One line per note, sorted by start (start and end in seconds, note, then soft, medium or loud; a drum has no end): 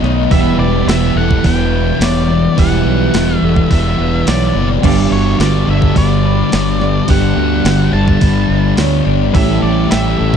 0.00 0.26 B1 medium
0.00 0.28 B2 medium
0.00 0.29 D#3 medium
0.00 0.30 F#3 medium
0.00 0.29 A3 medium
0.00 0.33 B3 loud
0.00 3.52 B3 medium
0.00 0.31 D#4 loud
0.00 0.30 F#4 loud
0.00 0.30 D#5 medium
0.04 0.31 F#3 medium
0.04 snare soft
0.30 0.54 E1 medium
0.30 0.87 E2 medium
0.30 2.55 E2 medium
0.30 2.56 B2 medium
0.30 0.88 B2 medium
0.30 2.56 E3 loud
0.30 0.90 E3 medium
0.30 2.58 G3 medium
0.30 2.59 B3 medium
0.30 2.57 E4 loud
0.30 2.59 G4 loud
0.30 1.20 B4 medium
0.30 0.59 E5 medium
0.30 kick loud
0.30 open hi-hat medium
0.58 0.82 E1 medium
0.58 0.88 G4 medium
0.58 0.88 D5 medium
0.86 1.10 E1 medium
0.86 1.43 E2 medium
0.86 1.18 B2 medium
0.86 1.20 G4 medium
0.86 1.17 E5 medium
0.86 snare loud
0.86 open hi-hat medium
0.91 1.16 E3 medium
1.16 1.39 E1 medium
1.16 1.44 B2 medium
1.16 1.45 E3 medium
1.16 1.45 A4 medium
1.16 1.46 F#5 medium
1.31 kick medium
1.43 1.91 E1 loud
1.43 1.99 E2 medium
1.43 2.01 B2 medium
1.43 2.02 E3 medium
1.43 1.73 B4 medium
1.43 2.03 G5 medium
1.43 kick medium
1.43 open hi-hat medium
1.73 2.01 B4 medium
2.00 2.46 E1 medium
2.00 2.56 E2 medium
2.00 2.30 B2 medium
2.00 2.27 E3 medium
2.00 2.29 C#5 medium
2.00 2.60 D5 medium
2.00 snare loud
2.00 open hi-hat medium
2.28 2.57 B2 medium
2.28 2.59 E3 medium
2.28 4.31 D5 medium
2.57 2.81 E1 loud
2.57 4.81 E2 medium
2.57 3.13 E2 loud
2.57 4.82 B2 medium
2.57 3.14 B2 loud
2.57 4.82 E3 loud
2.57 3.16 E3 medium
2.57 4.84 G3 loud
2.57 4.85 B3 medium
2.57 4.83 E4 medium
2.57 4.86 G4 loud
2.57 3.47 B4 loud
2.57 3.39 F#5 medium
2.57 kick loud
2.57 open hi-hat medium
2.85 3.08 B1 medium
2.85 3.15 G4 medium
3.14 3.37 E1 medium
3.14 3.68 E2 medium
3.14 3.44 B2 medium
3.14 3.41 E3 medium
3.14 3.47 G4 medium
3.14 snare loud
3.14 open hi-hat medium
3.39 3.65 E1 medium
3.39 3.71 E3 medium
3.39 3.71 E5 medium
3.44 3.70 B2 medium
3.44 3.71 A4 medium
3.56 kick medium
3.69 3.94 E1 loud
3.69 4.25 E2 medium
3.69 4.27 B2 medium
3.69 4.28 E3 medium
3.69 4.00 B4 medium
3.69 4.28 E5 medium
3.69 kick medium
3.69 open hi-hat medium
3.99 4.22 E1 medium
3.99 4.28 B4 medium
4.26 4.50 B1 medium
4.26 4.81 E2 medium
4.26 4.57 B2 medium
4.26 4.54 E3 medium
4.26 4.55 C#5 medium
4.26 4.67 D5 medium
4.26 snare loud
4.26 open hi-hat medium
4.55 4.78 F#1 medium
4.55 4.83 B2 medium
4.55 4.81 E3 medium
4.55 6.56 D5 medium
4.83 5.06 G1 medium
4.83 7.06 G2 medium
4.83 5.37 G2 medium
4.83 7.07 D3 medium
4.83 5.39 D3 medium
4.83 7.09 G3 medium
4.83 5.41 G3 loud
4.83 7.08 B3 medium
4.83 7.08 D4 loud
4.83 5.12 G4 loud
4.83 7.10 G4 loud
4.83 5.12 D5 medium
4.83 kick loud
4.83 crash loud
5.11 5.34 G1 medium
5.11 5.41 F#4 medium
5.11 5.40 C#5 medium
5.38 5.63 G1 loud
5.38 5.94 G2 medium
5.38 5.68 D3 medium
5.38 5.66 G3 medium
5.38 7.14 F#4 medium
5.38 5.69 D5 medium
5.38 snare loud
5.38 open hi-hat medium
5.66 5.91 G1 medium
5.66 5.95 D3 medium
5.66 5.97 G3 medium
5.66 5.97 A4 medium
5.70 5.97 E5 medium
5.82 kick medium
5.95 6.42 G1 loud
5.95 6.49 G2 medium
5.95 6.51 D3 medium
5.95 6.53 G3 medium
5.95 6.24 B4 medium
5.95 7.13 D5 medium
5.95 kick medium
5.95 open hi-hat medium
6.26 6.53 B4 medium
6.50 6.99 G1 medium
6.50 7.06 G2 medium
6.50 6.81 D3 medium
6.50 6.78 G3 medium
6.50 6.81 C#5 medium
6.50 snare loud
6.50 open hi-hat medium
6.79 7.08 D3 medium
6.79 7.10 G3 medium
6.79 7.10 D5 medium
6.79 snare soft
7.07 7.32 G1 medium
7.07 7.63 G2 medium
7.07 9.32 G2 medium
7.07 9.32 D3 loud
7.07 7.64 D3 loud
7.07 9.34 G3 medium
7.07 7.67 G3 loud
7.07 9.33 B3 medium
7.07 9.33 D4 medium
7.07 9.36 G4 medium
7.07 7.38 G4 medium
7.07 7.93 F#5 loud
7.07 kick loud
7.07 open hi-hat medium
7.37 7.60 D2 medium
7.37 7.65 F#4 medium
7.64 7.88 G1 medium
7.64 8.19 G2 medium
7.64 7.94 D3 medium
7.64 7.91 G3 medium
7.64 7.93 F#4 medium
7.64 snare loud
7.64 open hi-hat medium
7.92 8.16 G1 medium
7.92 8.21 D3 medium
7.92 8.23 G3 medium
7.92 8.22 A4 medium
7.92 8.74 A5 loud
8.08 kick medium
8.20 8.45 G1 loud
8.20 8.76 G2 medium
8.20 8.78 D3 medium
8.20 8.81 G3 medium
8.20 8.48 B4 medium
8.20 kick medium
8.20 open hi-hat medium
8.49 8.72 G1 medium
8.49 8.78 B4 medium
8.77 9.01 D2 medium
8.77 9.32 G2 medium
8.77 9.07 D3 medium
8.77 9.05 G3 medium
8.77 9.06 C#5 medium
8.77 snare loud
8.77 open hi-hat medium
9.05 9.29 G1 medium
9.05 9.33 D3 medium
9.05 9.35 G3 medium
9.05 9.35 D5 medium
9.33 9.58 A1 loud
9.33 9.89 A2 medium
9.33 10.37 A2 medium
9.33 10.37 E3 medium
9.33 9.91 E3 loud
9.33 10.37 G3 loud
9.33 9.93 A3 loud
9.33 10.37 C#4 loud
9.33 10.37 G4 loud
9.33 9.66 A4 medium
9.33 9.62 E5 medium
9.33 kick loud
9.33 open hi-hat medium
9.38 10.37 E4 loud
9.62 9.86 A1 medium
9.62 9.91 G4 medium
9.62 9.91 D5 medium
9.90 10.14 A1 medium
9.90 10.37 A2 medium
9.90 10.20 E3 medium
9.90 10.17 A3 medium
9.90 10.18 G4 medium
9.90 10.37 E5 loud
9.90 snare loud
9.90 open hi-hat medium
10.18 10.37 A1 medium
10.18 10.37 E3 medium
10.18 10.37 A3 medium
10.18 10.37 A4 medium
10.34 kick medium